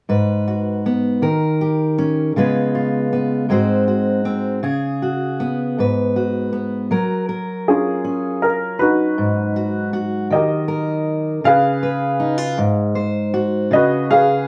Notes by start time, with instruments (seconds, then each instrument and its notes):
0.09 steel-string acoustic guitar G#2 B4
0.48 steel-string acoustic guitar F#4
0.86 steel-string acoustic guitar B3
1.22 steel-string acoustic guitar D#3 A#4
1.61 steel-string acoustic guitar G4
1.98 steel-string acoustic guitar C#4
2.36 steel-string acoustic guitar C#3 G#3 B3 F4 B4
2.75 steel-string acoustic guitar F4
3.13 steel-string acoustic guitar B3
3.49 steel-string acoustic guitar G#2 G#3 C4 F#4 C5
3.88 steel-string acoustic guitar F#4
4.25 steel-string acoustic guitar C4
4.63 steel-string acoustic guitar C#3 G#4
5.02 steel-string acoustic guitar F#4
5.40 steel-string acoustic guitar B3
5.78 steel-string acoustic guitar G#2 B4
6.16 steel-string acoustic guitar F#4
6.53 steel-string acoustic guitar B3
6.91 steel-string acoustic guitar F#3 A#4
7.29 steel-string acoustic guitar A#4
7.68 upright piano C#4 F4 G#4
8.04 steel-string acoustic guitar C#4
8.42 upright piano A#4
8.79 upright piano D#4 F#4 B4
9.18 steel-string acoustic guitar G#2
9.56 steel-string acoustic guitar F#4
9.93 steel-string acoustic guitar F#4
10.30 steel-string acoustic guitar D#3, upright piano A#4 D#5
10.34 upright piano G4
10.68 steel-string acoustic guitar A#4
11.44 steel-string acoustic guitar C#3, upright piano G#4 B4 F5
11.83 steel-string acoustic guitar B4
12.20 steel-string acoustic guitar D#4
12.38 steel-string acoustic guitar F4
12.58 steel-string acoustic guitar G#2
12.95 steel-string acoustic guitar C5
13.34 steel-string acoustic guitar F#4
13.71 steel-string acoustic guitar C#3, upright piano D#5
13.75 upright piano F#4 B4
14.11 steel-string acoustic guitar G#4, upright piano G#4 B4 F5